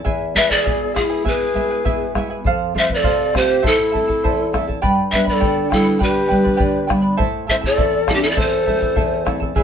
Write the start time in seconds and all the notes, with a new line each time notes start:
0.04 E2 E4 G#4 B4 E5 G#5, bombo low
0.34 G#3 B3 E4 B4 E5 G#5, bombo low
0.49 E4 B4 D5 G#5, bombo low
0.53 G#4
0.65 B2 E4 G#4 B4 E5 G#5, bombo low
0.94 G#3 B3 E4 G#4 B4 E5 G#5, bombo rim, bombo low
0.99 F4
1.04 E4
1.10 E4 B4 G#5
1.25 B2 E4 G#4 B4 E5 G#5, bombo low
1.54 G#3 B3 E4 B4 E5 G#5, bombo low
1.70 E4 B4 G#5
1.85 B2 E4 G#4 B4 E5 G#5, bombo low
2.15 G#3 B3 E4 B4 E5 G#5, bombo rim, bombo low
2.30 E4 B4 G#5
2.44 F2 A4 C5 F5, bombo low
2.74 A3 C4 F4 A4 C5 E5 F5, bombo low
2.88 B4 C5 F5, bombo low
2.95 A4 D5
3.03 C3 A4 C5 F5, bombo low
3.33 A3 C4 F4 G4 A4 C5 F5, bombo rim, bombo low
3.49 C5 F5
3.62 A2 E4 A4 C5 E5 A5, bombo low
3.67 E4 A4
3.92 E4 A4 E5 A5, bombo low
3.96 A3 C4 E4
4.08 E4 A4 A5, bombo low
4.23 E2 E4 A4 C5 E5 A5, bombo low
4.53 A3 C4 E4 A4 E5 A5, bombo rim, bombo low
4.68 E4 A4 A5, bombo low
4.82 G2 G4 B4 D5 G5 B5, bombo low
5.11 G3 B3 D4 B4 D5 E5 G5 B5, bombo low
5.25 B4 D5 B5, bombo low
5.33 A4
5.40 D3 G4 B4 D5 G5 B5, bombo low
5.70 G3 B3 D4 E4 A4 B4 D5 G5 B5, bombo rim, bombo low
5.84 B4 D5 B5
5.99 D3 G4 B4 D5 G5 B5, bombo low
6.03 B4
6.28 G3 B3 D4 B4 D5 G5 B5, bombo low
6.44 B4 D5 B5, bombo low
6.57 D3 G4 B4 D5 G5 B5, bombo low
6.87 G3 B3 D4 B4 D5 G5 B5, bombo rim, bombo low
7.02 B4 D5 B5
7.17 A2 E4 A4 C5 E5 A5, bombo low
7.47 A3 E4 A4 C5 E5 A5, bombo low
7.51 C4 E4
7.61 E4 A4 A5, bombo low
7.66 A4 D5
7.76 E2 E4 A4 C5 E5 A5, bombo low
8.07 A3 C4 E4 A4 E5 A5, bombo rim, bombo low
8.14 D4 G4
8.21 E4 A4 A5
8.26 E4
8.31 A4 D5
8.36 E2 E4 A4 C5 E5 A5, bombo low
8.42 A4
8.66 A3 C4 E4 A4 E5 A5, bombo low
8.80 E4 A4 A5, bombo low
8.96 E2 E4 A4 C5 E5 A5, bombo low
9.25 A3 C4 E4 A4 E5 A5, bombo rim, bombo low
9.40 E4 A4 A5, bombo low
9.55 E2 E4 G#4 B4 E5 G#5, bombo low